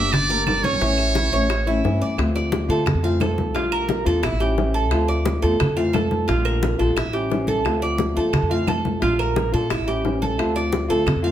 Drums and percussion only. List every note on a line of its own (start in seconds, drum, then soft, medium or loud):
0.13 high bongo medium
0.13 high conga soft
0.13 low conga medium
0.13 claves medium
0.30 high bongo soft
0.30 high conga soft
0.46 high bongo soft
0.46 low bongo medium
0.46 high conga medium
0.46 claves medium
0.63 high conga medium
0.81 high bongo medium
0.81 high conga soft
0.98 high bongo soft
0.98 high conga soft
0.98 claves medium
1.15 high bongo medium
1.15 high conga medium
1.32 high bongo soft
1.32 high conga soft
1.49 high bongo medium
1.49 high conga soft
1.49 claves medium
1.67 high bongo soft
1.67 high conga soft
1.84 high bongo soft
1.84 low bongo medium
1.84 high conga soft
2.18 high bongo medium
2.18 high conga soft
2.18 claves medium
2.35 high bongo soft
2.35 high conga soft
2.52 high bongo medium
2.52 high conga medium
2.70 high bongo soft
2.70 high conga soft
2.86 high bongo medium
2.86 high conga soft
2.86 low conga medium
2.86 claves medium
3.03 high conga soft
3.20 high bongo soft
3.20 low bongo medium
3.20 high conga medium
3.20 claves medium
3.38 high bongo soft
3.38 high conga medium
3.55 high bongo medium
3.55 high conga soft
3.72 high bongo soft
3.72 high conga soft
3.72 claves medium
3.89 high bongo medium
3.89 high conga medium
4.06 high bongo soft
4.06 high conga soft
4.23 high bongo medium
4.23 high conga soft
4.23 claves medium
4.40 high conga soft
4.58 high bongo soft
4.58 low bongo medium
4.58 high conga soft
4.75 high bongo soft
4.91 high bongo medium
4.91 high conga soft
4.91 claves medium
5.08 high bongo soft
5.08 high conga soft
5.25 high bongo medium
5.25 high conga loud
5.43 high bongo soft
5.43 high conga soft
5.60 high bongo medium
5.60 high conga soft
5.60 low conga medium
5.60 claves medium
5.77 high conga soft
5.94 high bongo soft
5.94 low bongo medium
5.94 high conga medium
5.94 claves medium
6.11 high bongo soft
6.11 high conga medium
6.28 high bongo medium
6.28 high conga soft
6.45 high bongo soft
6.45 high conga soft
6.45 claves medium
6.63 high bongo medium
6.63 high conga medium
6.79 high bongo soft
6.79 high conga soft
6.97 high bongo medium
6.97 high conga soft
6.97 claves medium
7.14 high conga soft
7.30 high bongo soft
7.30 low bongo medium
7.30 high conga soft
7.47 high bongo soft
7.47 high conga medium
7.64 high bongo medium
7.64 high conga soft
7.64 claves medium
7.81 high bongo soft
7.81 high conga soft
7.98 high bongo medium
7.98 high conga medium
8.16 high bongo soft
8.16 high conga soft
8.33 high bongo medium
8.33 high conga soft
8.33 low conga medium
8.33 claves medium
8.51 high conga soft
8.67 high bongo soft
8.67 low bongo medium
8.67 high conga medium
8.67 claves medium
8.85 high bongo soft
8.85 high conga loud
9.02 high bongo medium
9.02 high conga soft
9.19 high bongo soft
9.19 high conga soft
9.19 claves medium
9.36 high bongo medium
9.36 high conga loud
9.54 high bongo soft
9.54 high conga soft
9.70 high bongo medium
9.70 high conga soft
9.70 claves medium
9.88 high conga soft
10.05 high bongo soft
10.05 low bongo medium
10.05 high conga soft
10.22 high bongo soft
10.22 high conga medium
10.39 high bongo medium
10.39 high conga soft
10.39 claves medium
10.56 high bongo soft
10.56 high conga soft
10.72 high bongo medium
10.72 high conga medium
10.89 high bongo soft
10.89 high conga soft
11.07 high bongo medium
11.07 high conga soft
11.07 low conga medium
11.07 claves medium
11.24 high conga soft